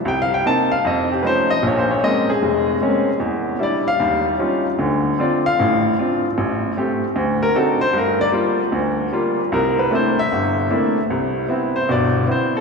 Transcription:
X:1
M:4/4
L:1/16
Q:"Swing" 1/4=152
K:Cmix
V:1 name="Grand piano"
(3g2 f2 g2 a2 f2 _e2 G2 [=Bc]2 e2 | (3_d2 c2 d2 _e2 _A8- A2 | z4 d2 f4 z6 | z4 d2 f4 z6 |
z8 z2 B2 A2 c2 | B2 d2 z12 | B2 =B2 c2 e8- e z | [K:C] z6 c2 d4 c2 A2 |]
V:2 name="Grand piano"
C,,4 [B,C_E]2 z2 F,,4 [F,A,_DE]2 z2 | [B,,,B,,]4 [_A,B,C_D]2 z2 F,,,4 [A,B,CD]2 z2 | E,,4 [G,DE]2 z2 [_E,,G,]4 [G,_D_EF]2 z2 | [D,,D,]4 [CDF]2 z2 [A,,,A,,]4 [CDF]2 z2 |
A,,,4 [A,CG]2 z2 D,,4 [CD_E^F]2 z2 | G,,4 [G,B,F]2 z2 D,,4 [G,B,F]2 z2 | C,,4 [A,B,CDE]2 z2 G,,,4 [A,B,CDE]2 z2 | [K:C] C,,4 [B,CE]2 z2 [G,,,B,,]4 [B,CE]2 z2 |]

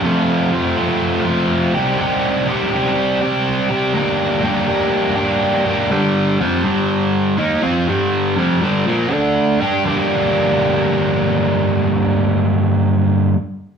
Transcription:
X:1
M:4/4
L:1/8
Q:1/4=122
K:Gm
V:1 name="Overdriven electric guitar" clef=bass
[F,,C,F,A,CF]2 [F,A,CF] [F,A,CF]2 [F,A,CF]2 [C,E,G,CG] | [C,E,G,CG]2 [E,G,CG] [G,CG]2 [G,CG]2 [G,CG] | [G,,D,G,B,DG]2 [G,B,DG] [G,B,DG]2 [G,B,DG]2 [G,B,DG] | [G,,D,G,]2 [F,,C,F,] [G,,D,G,]3 [E,B,E] [F,CF] |
[G,,D,G,]2 [F,,C,F,] [G,,D,G,] [B,,F,B,] [D,A,D]2 [G,DG] | [G,,D,G,B,DG]8- | [G,,D,G,B,DG]8 |]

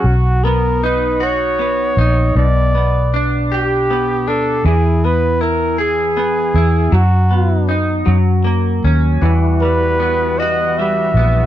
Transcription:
X:1
M:6/8
L:1/8
Q:3/8=52
K:B
V:1 name="Flugelhorn"
F A B c3 | =d2 z =G2 =A | G B A G3 | F2 z4 |
z B2 d e2 |]
V:2 name="Clean electric guitar"
z B, D F B, D | B,, B, =D =G B, D | E, B, E G B, E | F, B, D F, A, C |
E, =G, B, F G, B, |]
V:3 name="Tonewheel organ"
z6 | z6 | z6 | z6 |
[E,=G,B,F]6 |]
V:4 name="Fingered electric bass" clef=bass
B,,,4- B,,, A,,, | B,,,4- B,,, =D,, | E,,4- E,, E,, | F,,3 F,,2 D,, |
E,,4- E,, A,,, |]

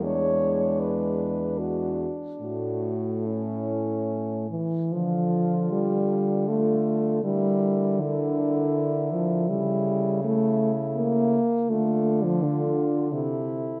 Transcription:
X:1
M:3/4
L:1/16
Q:1/4=80
K:Dm
V:1 name="French horn"
^c4 =B4 ^F2 z2 | ^F4 E4 z4 | A8 A4 | B4 B8 |
A4 A6 z2 | A4 A8 |]
V:2 name="French horn"
D12- | D2 z2 ^C6 z2 | F8 F4 | E4 E8 |
E4 E6 z2 | F4 F4 E4 |]
V:3 name="French horn" clef=bass
^G,8- G,2 z2 | A,8- A,2 E,2 | F,4 G,4 A,4 | G,4 D,6 F,2 |
G,4 A,3 z B,4 | A,3 F, D,6 z2 |]
V:4 name="French horn" clef=bass
E,,8- E,,2 z2 | A,,8- A,,2 z2 | D,12 | D,12 |
^C,8- C,2 z2 | D,8 C,4 |]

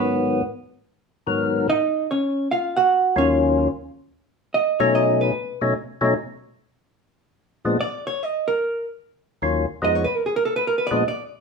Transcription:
X:1
M:4/4
L:1/16
Q:"Swing" 1/4=147
K:Ebm
V:1 name="Hollow-body jazz guitar"
[Cc]4 z12 | [Ee]4 [Dd]4 [Ff]2 [Gg]4 [Dd]2- | [Dd]4 z8 e2 d2 | ^d2 =B4 z8 z2 |
z12 =d2 _d2 | e2 B4 z8 z2 | e d c B A B =A c B c =d e d2 z2 |]
V:2 name="Tonewheel organ" clef=bass
[A,,E,G,C]4 z8 [A,,E,G,CB]4 | z12 z2 [E,,E,G,DF]2- | [E,,E,G,DF]4 z8 z2 [C,G,=A,DE]2- | [C,G,=A,DE]4 z2 [=B,,^F,A,D^D]2 z2 [B,,F,A,_D^D]2 z4 |
z8 z2 [B,,F,A,C=D]2 z4 | z12 [E,,E,G,DF]2 z2 | [F,,F,A,CE]2 z8 [B,,F,A,C=D]2 z4 |]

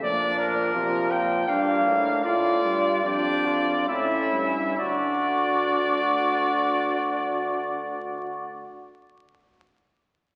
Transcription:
X:1
M:3/4
L:1/8
Q:1/4=64
K:Dm
V:1 name="Trumpet"
d B2 g f2 | d2 d2 e2 | d6- | d6 |]
V:2 name="Flugelhorn"
D2 F2 B,2 | F2 G F E2 | ^F6- | ^F6 |]
V:3 name="Trombone"
F,2 F,2 D2 | F2 D2 ^C2 | D6- | D6 |]
V:4 name="Bass trombone" clef=bass
B,,2 C, B,, G,, A,, | A,, G,, F,,2 A,, G,, | D,,6- | D,,6 |]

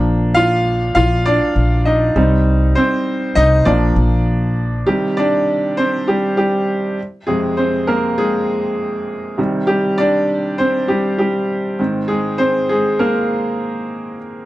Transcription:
X:1
M:4/4
L:1/16
Q:1/4=100
K:Cm
V:1 name="Upright piano"
z2 [Ff]4 [Ff]2 [Dd]4 [Ee]3 z | z2 [Cc]4 [Ee]2 d6 z2 | G2 [Dd]4 [Cc]2 [G,G]2 [G,G]4 z2 | A2 [Cc]2 [B,B]2 [A,A]8 z2 |
[G,G]2 [Dd]4 [Cc]2 [G,G]2 [G,G]4 z2 | [A,A]2 [Cc]2 [A,A]2 [B,B]8 z2 |]
V:2 name="Upright piano" clef=bass
[F,B,D]4 z8 z2 [G,CE]2- | [G,CE]8 [F,B,D]8 | [C,E,G,]2 z12 z2 | [F,,C,A,]2 z12 [C,E,G,]2 |
z12 z2 [A,,E,C]2- | [A,,E,C]12- [A,,E,C]2 z2 |]
V:3 name="Upright bass" clef=bass
B,,,6 B,,,3 z B,,,4 C,,2- | C,,2 z4 C,,2 B,,,2 B,,,6 | z16 | z16 |
z16 | z16 |]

